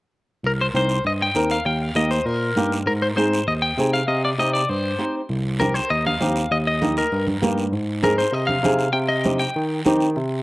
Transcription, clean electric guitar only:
0.47 A#4
0.61 C5
0.76 C5
1.07 D#5
1.22 G5
1.51 F5
1.66 G5
1.82 F5
1.96 D#5
2.11 C5
2.26 A#4
2.87 A#4
3.02 C5
3.17 C5
3.48 D#5
3.62 G5
3.93 F5
4.08 D#5
4.25 D5
4.39 D#5
4.53 D5
4.69 C5
5.60 A#4
5.74 C5
5.90 D#5
6.07 F5
6.52 D#5
6.67 D#5
6.98 A#4
8.04 A#4
8.18 C5
8.33 D#5
8.47 F5
8.93 G5
9.09 D#5
9.40 G5

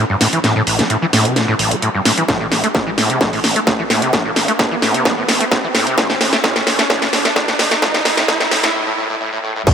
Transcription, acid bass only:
0.10 G2
0.21 A2
0.33 E3
0.44 A2
0.56 A2
0.67 A1
0.79 A3
0.90 A2
1.02 E3
1.13 A2
1.25 C3
1.36 A2
1.48 A2
1.59 A1
1.71 A3
1.82 A2
1.95 G2
2.05 A2
2.18 E3
2.28 A2
2.41 A2
2.51 A1
2.64 A3
2.75 A2
2.87 E3
2.98 A2
3.10 C3
3.21 A2
3.33 A2
3.44 A1
3.56 A3
3.67 A2
3.79 E3
3.90 A2
4.02 C3
4.13 A2
4.25 A2
4.36 A1
4.48 A3
4.59 A2
4.71 E3
4.82 A2
4.94 C3
5.06 A2
5.18 A2
5.29 A1
5.41 A3
5.52 A2
5.64 E3
5.75 A2
5.87 C3
5.98 A2
6.10 A2
6.21 A1
6.33 A3
6.44 A2
6.56 A2
6.67 A1
6.79 A3
6.90 A2
7.02 A2
7.13 A1
7.25 A3
7.36 A2
7.48 A2
7.59 A1
7.71 A3
7.82 A2
7.94 A2
8.05 A2
8.17 A2
8.28 A2
8.40 A2
8.51 A2
8.64 A2
8.75 A2
8.87 A2
8.98 A2
9.10 A2
9.21 A2
9.33 A2
9.44 A2
9.56 A2
9.67 A2

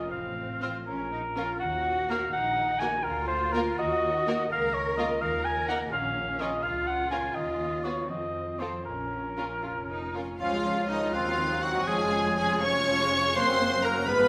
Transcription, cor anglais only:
Already playing: D#5
0.11 F5
0.63 F5
0.87 A#4
1.59 F#5
2.10 F5
2.33 F#5
2.79 G#5
3.04 A#4
3.28 C5
3.52 A#4
3.79 D#5
4.52 F5
4.74 C#5
4.97 D#5
5.22 F5
5.45 G#5
5.68 F#5
5.92 F5
6.41 D#5
6.63 F5
6.87 F#5
7.11 G#5
7.35 D#5
7.84 C#5
8.10 D#5
8.59 C5
8.86 A#4
10.40 F4
10.91 D#4
11.14 F4
11.62 F#4
11.87 G#4
12.39 G#4
12.64 C#5
13.36 C5
13.84 A#4
14.07 B4

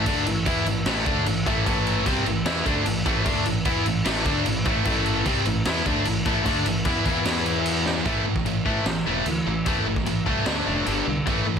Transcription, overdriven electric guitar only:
0.06 D3 A3 D4
0.26 A2 E3
0.46 E3 B3 E4
0.66 A2 E3
0.86 A2 E3 A3
1.06 D3 A3 D4
1.26 A2 E3
1.46 A2 E3 A3
1.67 A2 E3 A3
2.06 C3 G3 C4
2.26 A2 E3
2.46 E3 B3 E4
2.66 D3 A3 D4
2.86 A2 E3
3.06 A2 E3 A3
3.26 D3 A3 D4
3.45 A2 E3
3.65 E3 B3 E4
3.85 A2 E3
4.05 A2 E3 A3
4.25 D3 A3 D4
4.46 A2 E3
4.65 A2 E3 A3
4.85 A2 E3 A3
5.25 C3 G3 C4
5.46 A2 E3
5.66 E3 B3 E4
5.86 D3 A3 D4
6.06 A2 E3
6.25 A2 E3 A3
6.45 D3 A3 D4
6.65 A2 E3
6.85 E3 B3 E4
7.05 E3 B3 E4
8.05 A2 E3 A3
8.25 A2 E3
8.45 A2 E3
8.65 A2 E3 A3
8.87 A2 E3
9.06 A2 E3 A3
9.26 A2 E3
9.46 A2 E3
9.65 A2 E3 A3
9.86 A2 E3
10.06 A2 E3
10.26 A2 E3 A3
10.46 D3 A3 D4
10.66 D3 A3 D4
10.86 G2 D3 G3
11.06 G2 D3
11.26 A2 E3 A3
11.46 A2 E3

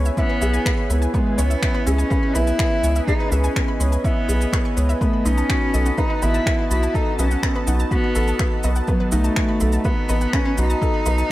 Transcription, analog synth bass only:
Already playing: C#2
0.42 B1
0.90 C#2
1.38 C#2
1.87 C#2
2.35 B1
2.83 C#2
3.31 C#2
3.80 C#2
4.29 B1
4.77 C#2
5.26 B1
5.74 B1
6.23 A1
6.71 B1
7.19 B1
7.67 B1
8.16 A1
8.64 B1
9.13 B1
9.62 B1
10.10 A1
10.58 B1
11.06 B1

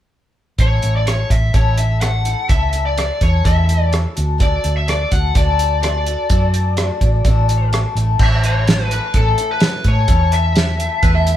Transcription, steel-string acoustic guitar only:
0.58 A2 E3 A3 C#4 E4 A4
1.05 A3 C#4 E4 A4
1.53 A2 E3 A3 C#4 E4 A4
2.02 A3 C#4 E4 A4
2.24 A3 C#4 E4 A4
2.48 A2 E3 A3 C#4 E4 A4
2.96 A3 C#4 E4 A4
3.21 A3 C#4 E4 A4
3.44 A2 E3 A3 C#4 E4 A4
3.91 A3 C#4 E4 A4
4.15 D4 F#4 A4
4.38 D3 A3 D4 F#4 A4
4.87 A3 D4 F#4 A4
5.10 D4 F#4 A4
5.34 D3 A3 D4 F#4 A4
5.81 A3 D4 F#4 A4
6.05 D4 F#4 A4
6.30 D3 A3 D4 F#4 A4
6.77 A3 D4 F#4 A4
7.01 D4 F#4 A4
7.25 D3 A3 D4 F#4 A4
7.72 A3 D4 F#4 A4
7.97 A3 C#4 E4 A4
8.20 A2 E3 A3 C#4 E4 A4
8.67 A3 C#4 E4 A4
8.91 A3 C#4 E4 A4
9.15 A2 E3 A3 C#4 E4 A4
9.62 A3 C#4 E4 A4
9.85 A3 C#4 E4 A4
10.09 A2 E3 A3 C#4 E4 A4
10.56 A3 C#4 E4 A4
10.79 A3 C#4 E4 A4
11.03 A2 E3 A3 C#4 E4 A4

